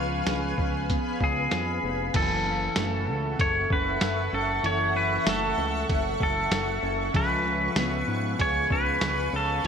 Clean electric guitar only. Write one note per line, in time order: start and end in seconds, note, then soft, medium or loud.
0.00 2.14 F3 medium
0.00 0.88 B3 medium
0.00 0.58 C#4 medium
0.00 0.26 G#4 medium
0.27 1.19 G#4 medium
0.59 1.51 C#4 medium
0.89 1.82 B3 medium
1.21 2.14 G#4 medium
1.52 2.45 C#4 soft
1.83 2.20 B3 medium
2.14 4.63 E3 medium
2.14 3.39 A4 medium
2.45 3.08 C#4 medium
2.77 5.25 A3 medium
3.08 3.70 C#4 medium
3.40 4.00 A4 medium
3.71 4.32 C#4 medium
4.01 4.63 A4 medium
4.33 4.95 C#4 medium
4.64 7.14 E3 medium
4.64 5.88 A4 medium
4.95 5.57 C#4 medium
5.27 7.20 A3 medium
5.58 6.20 C#4 medium
5.89 6.50 A4 medium
6.20 6.83 C#4 medium
6.52 7.14 A4 medium
6.83 7.44 C#4 medium
7.14 9.63 F3 medium
7.14 8.38 G#4 medium
7.45 8.07 C#4 medium
7.76 9.67 B3 medium
8.07 8.70 C#4 medium
8.39 9.02 G#4 medium
8.70 9.32 C#4 medium
9.33 9.67 C#4 medium